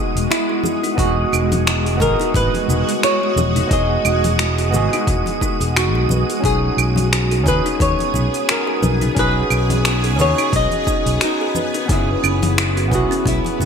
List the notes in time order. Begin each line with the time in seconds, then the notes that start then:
Already playing: G#3 B3 D#4 F#4 G#4 D#5 D#6
0.15 E1, open hi-hat, cabasa
0.31 E4, finger snap, open hi-hat, cabasa
0.49 F#4
0.64 G#4, high conga, cabasa
0.84 D#4, open hi-hat, cabasa
0.95 E1 B3 D#4 F#4 D#5, kick, open hi-hat, cabasa
1.01 G#4
1.33 E1 D#4, cabasa, claves
1.52 open hi-hat, high conga, cabasa
1.67 E4, finger snap, open hi-hat, cabasa
1.86 F#4, open hi-hat
1.97 G#1 B3 F#4 G#4 D#5, kick, low conga
2.01 G#4 A#4, open hi-hat, cabasa
2.20 D#4, open hi-hat, cabasa
2.34 G#1 D#4 B4, kick, open hi-hat, cabasa
2.54 open hi-hat, high conga
2.68 E1 D#4, low conga, cabasa
2.89 open hi-hat, cabasa
3.03 E4 C#5, finger snap, open hi-hat, cabasa
3.23 F#4
3.36 E1 G#4, high conga, cabasa
3.56 D#4, open hi-hat, low conga, cabasa
3.67 E1 B3 D#5
3.71 D#4 F#4 G#4 D#5, kick, open hi-hat, cabasa
4.05 E1 D#4, cabasa, claves
4.24 open hi-hat, high conga, cabasa
4.39 E4, finger snap, open hi-hat, cabasa
4.58 F#4, open hi-hat
4.70 G#1 B3 F#4 G#4 D#5, open hi-hat, low conga, cabasa
4.76 G#4
4.93 D#4, open hi-hat, cabasa, claves
5.07 E1 D#4, kick, open hi-hat, cabasa
5.26 open hi-hat, high conga
5.41 D#4, kick, cabasa
5.60 E1 G#4, open hi-hat, cabasa
5.77 D#4 F#4, finger snap, open hi-hat, cabasa
5.95 B1 D#4
6.09 B1 B4, high conga, cabasa
6.30 F#4, open hi-hat, cabasa
6.40 B1 B3 C#4 D#4 F#4 G#4, kick
6.45 G#4, open hi-hat, cabasa
6.77 B1 D#4, cabasa, claves
6.96 open hi-hat, high conga, cabasa
7.13 F#4, finger snap, open hi-hat, cabasa
7.31 G#4, open hi-hat
7.43 D#2 C#4 D#4 F#4 B4, kick, open hi-hat, low conga, cabasa
7.48 G#4 B4
7.66 D#4, open hi-hat, cabasa
7.80 D#2 D#4 C#5, kick, open hi-hat, cabasa
7.99 open hi-hat, high conga
8.14 B1 D#4, low conga, cabasa
8.34 open hi-hat, cabasa
8.49 F#4 A#4, finger snap, open hi-hat, cabasa
8.67 G#4
8.82 B1 B4, high conga, cabasa
9.01 D#4, open hi-hat, low conga, cabasa
9.15 B1 C#4 D#4, kick, open hi-hat, cabasa
9.19 F#4 G#4 B4
9.50 B1 D#4, cabasa, claves
9.70 open hi-hat, high conga, cabasa
9.85 F#4, finger snap, open hi-hat, cabasa
10.04 G#4, open hi-hat
10.16 D#2 C#4 D#4 F#4 B4, open hi-hat, low conga, cabasa
10.21 G#4 C#5
10.38 D#4, open hi-hat, cabasa, claves
10.53 B1 D#4 D#5, kick, open hi-hat, cabasa
10.71 open hi-hat, high conga
10.87 D#4, kick, cabasa
11.06 B1, open hi-hat, cabasa
11.21 D#4 F#4, finger snap, open hi-hat, cabasa
11.41 G#4
11.55 B4, high conga, cabasa
11.74 D#4, open hi-hat, cabasa
11.86 F#1 E3 B3 C#4 E4, kick, open hi-hat
11.90 C#4 E4 F#4 G#4, cabasa
12.23 F#1 C#4, cabasa, claves
12.43 open hi-hat, high conga, cabasa
12.58 E4, finger snap, open hi-hat, cabasa
12.77 F#4, open hi-hat
12.88 B1 B3 C#4 B4, kick
12.92 E4 F#4 G#4, open hi-hat, low conga, cabasa
13.11 C#4, open hi-hat, cabasa
13.26 B1 C#4 E4, kick, open hi-hat, cabasa
13.45 open hi-hat, high conga
13.60 F#1 C#4, low conga, cabasa